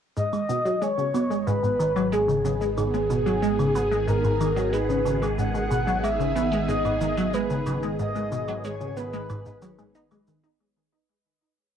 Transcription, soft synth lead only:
0.16 D#5
0.82 C#5
1.47 B4
2.13 G#4
2.78 G#4
4.08 A#4
4.73 B4
5.38 F#5
6.03 E5
6.69 D#5
7.34 B4
7.99 D#5
8.64 C#5
8.97 B4

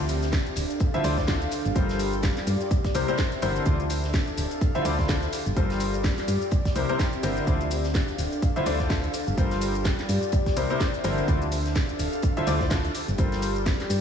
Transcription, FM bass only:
Already playing: D2
0.57 D1
1.04 D2
1.65 G1
1.76 G1
2.47 G2
2.95 C2
3.42 G1
3.66 D2
4.38 D1
4.85 D2
5.46 G1
5.57 G1
6.28 G2
6.76 C2
7.23 G1
7.47 D2
8.19 D1
8.66 D2
9.27 G1
9.38 G1
10.09 G2
10.57 C2
11.04 G1
11.28 D2
11.99 D1
12.47 D2
13.08 G1
13.18 G1
13.90 G2

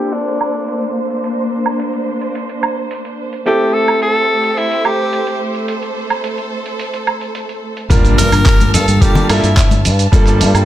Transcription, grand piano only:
Already playing: A#3 C4 D4 F4 A4
3.46 A3 C4 E4 G4 A4
7.90 G3 A#3 D4 F4 A#4
9.01 G3 A#3 D4 F4 A4
9.29 G3 A#3 D4 F4 A4
10.12 G3 A#3 D4 F4 A4

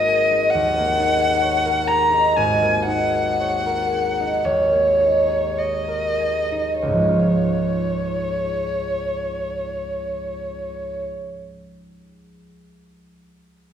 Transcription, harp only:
Already playing: G#1 A#3 D#4 A#4 C#5
0.08 G#4
0.31 D#4
0.54 D#2
0.78 A#3
1.00 D#4
1.20 G#4
1.42 C#5
1.66 A#4
1.89 G#4
2.13 D#4
2.37 G#1
2.62 A#3
2.87 D#4
3.12 G#4
3.40 C#5
3.66 A#4
3.92 G#4
4.20 D#4
4.45 D#2
4.72 A#3
5.00 D#4
5.28 G#4
5.57 C#5
5.88 A#4
6.20 G#4
6.52 D#4
6.82 C#2
6.87 G#2
6.93 F3
6.98 G#3
7.04 C#4
7.08 F4

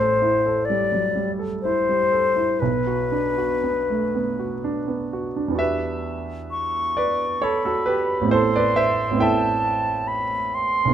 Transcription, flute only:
Already playing: C5
0.65 D5
1.62 C5
2.60 B4
6.51 C#6
7.44 B5
8.33 C6
9.23 A5
10.08 B5
10.55 C6

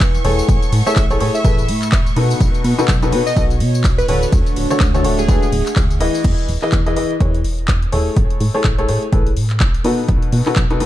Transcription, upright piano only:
0.24 A3 E4 G#4 A4 C#5
0.86 A3 E4 G#4 A4 C#5
1.11 A3 E4 G#4 A4 C#5
1.21 A3 E4 G#4 A4 C#5
1.45 A3 E4 G#4 A4 B4
2.16 B2 D#4 F#4 A4 B4
2.78 B2 D#4 F#4 A4 B4
3.03 B2 D#4 F#4 A4 B4
3.13 B2 D#4 F#4 A4 B4
3.37 B2 D#4 F#4 A4 B4
4.09 D3 D4 F#4 A4 C#5
4.70 D3 D4 F#4 A4 C#5
4.94 D3 D4 F#4 A4 C#5
5.04 D3 D4 F#4 A4 C#5
5.29 D3 D4 F#4 A4 B4
6.00 E3 E4 G#4 B4 D#5
6.62 E3 E4 G#4 B4 D#5
6.86 E3 E4 G#4 B4 D#5
6.96 E3 E4 G#4 B4 D#5
7.20 E3 E4 G#4 B4 C#5
7.92 A3 E4 G#4 A4 C#5
8.54 A3 E4 G#4 A4 C#5
8.78 A3 E4 G#4 A4 C#5
8.88 A3 E4 G#4 A4 C#5
9.12 A3 E4 G#4 A4 B4
9.84 B2 D#4 F#4 A4 B4
10.46 B2 D#4 F#4 A4 B4
10.70 B2 D#4 F#4 A4 B4
10.80 B2 D#4 F#4 A4 B4

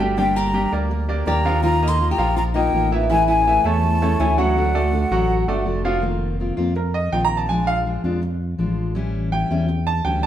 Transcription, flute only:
0.18 G5
0.36 A#5
1.27 A#5
1.64 A#5
1.88 C6
2.12 A#5
2.37 A#5
2.56 G5
3.11 G#5
3.28 G#5
3.65 A5
4.20 G#5
4.38 F#5

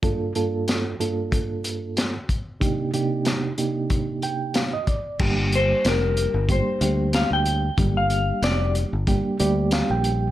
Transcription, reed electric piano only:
0.03 G2 A#3 D4 F4 A4
0.36 G2 A#3 D4 F4 A4
1.00 G2 A#3 D4 F4 A4
2.61 C3 A#3 D4 D#4 G4
2.93 C3 A#3 D4 D#4 G4
3.58 C3 A#3 D4 D#4 G4
4.23 G5
4.55 F5
4.73 D#5
4.88 D5
5.20 G3 A#3 D4 G4
6.49 G3 A#3 D4 G4
6.82 G3 A#3 D4 G4
7.78 G3 A#3 D4 G4
9.07 G3 A#3 D4 G4
9.39 G3 A#3 D4 G4 D5
9.73 F5
9.91 G5

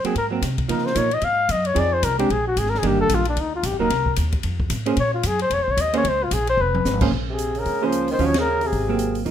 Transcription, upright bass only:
0.04 muted upright bass stroke
0.15 G#2
0.42 C3
0.69 C#3
0.96 A#2
1.22 G#2
1.49 F#2
1.76 F2
2.03 C2
2.30 A#1
2.56 G#1
2.83 G1
3.09 A#1
3.36 D2
3.63 A#1
3.70 G1
3.79 D#1
3.90 C2
4.17 D#2
4.44 F2
4.70 A2
4.97 A#2
5.23 F#2
5.50 F2
5.58 C#2
5.68 A#1
5.77 D#2
6.04 C#2
6.31 A#1
6.57 F1
6.85 G#1
7.12 A#1
7.66 C#2
8.19 D#2
8.73 G#1
9.26 C#2

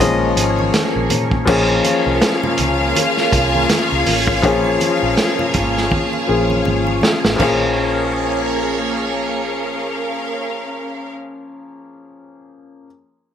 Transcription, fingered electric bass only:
0.00 A#1
0.36 G#1
0.96 A#1
1.11 A#2
1.48 A#1
2.06 C2
2.59 C#2
3.33 C2
3.92 C#2
4.07 A1
4.44 A#1
5.03 A#1
5.55 G#1
6.29 A#1
6.67 G#1
7.24 A1
7.40 A#1

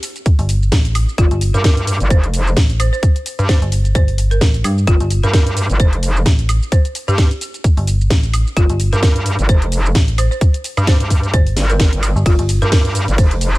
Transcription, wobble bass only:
1.18 G1
1.54 G2
2.00 G1
2.10 F1
3.39 G2
4.87 G1
5.24 G2
5.70 G1
5.80 F1
7.08 G2
8.57 G1
8.93 G2
9.39 G1
9.49 F1
10.77 G2
11.00 G2
11.57 G1
11.93 G1
12.26 G1
12.62 G2
13.08 G1
13.18 F1

